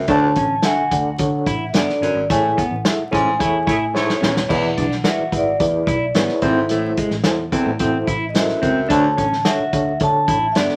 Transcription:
Already playing: E5
0.07 D2 D3 D4 F#4 A4 C#5 A5, kick, closed hi-hat
0.35 A1 C#4, kick, closed hi-hat
0.62 D4 F#4 A4 E5 G#5, snare, closed hi-hat
0.77 muted fingered electric bass stroke
0.91 D2 D4 F#4 A4 D5 F#5, kick, closed hi-hat
1.18 D3 D4 F#4 A4 C#5, kick, closed hi-hat
1.46 A1 E4, kick, closed hi-hat
1.69 F#1 E5
1.74 B3 D4 F#4 A4 D5, snare, closed hi-hat
1.89 snare
2.01 G1 F#2 C#4, closed hi-hat
2.15 G#1
2.30 A1 A2 A3 E4 G#4 A4 C#5 G#5, kick, closed hi-hat
2.57 B3 F#5, kick, closed hi-hat
2.71 A1
2.84 E4 G#4 A4 E5, snare, closed hi-hat
2.99 muted fingered electric bass stroke
3.11 A1 G#2 C#4 E4 G#4 A4 C#5 G#5, kick, closed hi-hat
3.39 E2 A3 E4 G#4 A4 C#5, kick, closed hi-hat
3.67 A2 A3 E4 G#4 C#5, kick, closed hi-hat
3.94 G#2 A3 E4 G#4 A4 C#5, snare
4.09 snare
4.21 D#1 E2 C#4, snare
4.37 snare
4.49 E1 E2 E3 E4 G#4 B4 D5, kick, crash
4.54 F#5
4.77 B1 D4, kick, closed hi-hat
4.92 snare
5.04 E4 F#4 G#4 B4 D5, snare, closed hi-hat
5.08 E5
5.18 muted fingered electric bass stroke
5.32 G#1 E4 G#4 B4 E5, kick, closed hi-hat
5.37 D5
5.60 E2 E4 G#4 B4 D5, kick, closed hi-hat
5.87 B1 E4, kick, closed hi-hat
6.14 G#1 B3 E4 G#4 B4 C#5, snare, closed hi-hat
6.29 snare
6.41 A1 G#2 A2 C4 E4 F#4 A4 C5, kick, closed hi-hat
6.56 G#1
6.69 A1 A2 A3, closed hi-hat
6.97 G#3, kick, closed hi-hat
7.11 A1, snare
7.24 E2 E4 F#4 A4 C5, snare, closed hi-hat
7.52 E2 C4 E4 F#4 A4 C5, kick, closed hi-hat
7.66 A2
7.79 A1 C4 E4 F#4 A4 C5, kick, closed hi-hat
8.07 A1 E4, kick, closed hi-hat
8.29 D#5
8.34 F#2 E4 F#4 A4 C5 E5, snare, closed hi-hat
8.49 snare
8.62 C#2 F#2 C4, kick, closed hi-hat
8.89 D2 D3 D4 F#4 A4 C#5 A5, kick, closed hi-hat
9.17 A1 C#4, kick, closed hi-hat
9.33 snare
9.45 D4 F#4 A4 C#5 E5, snare, closed hi-hat
9.60 muted fingered electric bass stroke
9.73 D2 D4 F#4 A4 C#5, kick, closed hi-hat
10.00 D3 D4 F#4 A4 C#5 A5, kick, closed hi-hat
10.28 A1 E4, kick, closed hi-hat
10.52 F#1 E5, closed hi-hat
10.56 B3 D4 F#4 A4 D5, snare
10.69 snare

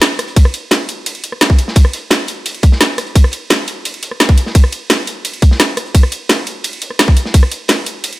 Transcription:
0.01 snare, closed hi-hat, ride
0.19 cross-stick, closed hi-hat, ride
0.28 closed hi-hat
0.36 kick, closed hi-hat, ride
0.45 cross-stick
0.54 closed hi-hat, ride
0.71 snare, closed hi-hat, ride
0.89 closed hi-hat, ride
1.06 closed hi-hat, ride
1.15 closed hi-hat
1.24 closed hi-hat, ride
1.32 cross-stick
1.41 snare, closed hi-hat, ride
1.50 kick
1.58 closed hi-hat, ride
1.68 snare
1.76 kick, closed hi-hat, ride
1.85 cross-stick
1.93 closed hi-hat, ride
2.11 snare, closed hi-hat, ride
2.28 closed hi-hat, ride
2.46 closed hi-hat, ride
2.54 closed hi-hat
2.63 kick, closed hi-hat, ride
2.72 snare
2.81 snare, closed hi-hat, ride
2.98 cross-stick, closed hi-hat, ride
3.06 closed hi-hat
3.15 kick, closed hi-hat, ride
3.24 cross-stick
3.32 closed hi-hat, ride
3.50 snare, closed hi-hat, ride
3.68 closed hi-hat, ride
3.85 closed hi-hat, ride
3.94 closed hi-hat
4.03 closed hi-hat, ride
4.11 cross-stick
4.20 snare, closed hi-hat, ride
4.29 kick, closed hi-hat
4.38 closed hi-hat, ride
4.46 snare
4.55 kick, closed hi-hat, ride
4.64 cross-stick
4.72 closed hi-hat, ride
4.90 snare, closed hi-hat, ride
5.07 closed hi-hat, ride
5.25 closed hi-hat, ride
5.34 closed hi-hat
5.42 kick, closed hi-hat, ride
5.51 snare
5.60 snare, closed hi-hat, ride
5.77 cross-stick, closed hi-hat, ride
5.86 closed hi-hat
5.95 kick, closed hi-hat, ride
6.03 cross-stick
6.12 closed hi-hat, ride
6.29 snare, closed hi-hat, ride
6.47 closed hi-hat, ride
6.64 closed hi-hat, ride
6.73 closed hi-hat
6.82 closed hi-hat, ride
6.90 cross-stick
6.99 snare, closed hi-hat, ride
7.08 kick
7.17 closed hi-hat, ride
7.25 snare
7.34 kick, closed hi-hat, ride
7.43 cross-stick
7.51 closed hi-hat, ride
7.68 snare, closed hi-hat, ride
7.86 closed hi-hat, ride
8.04 closed hi-hat, ride
8.13 closed hi-hat

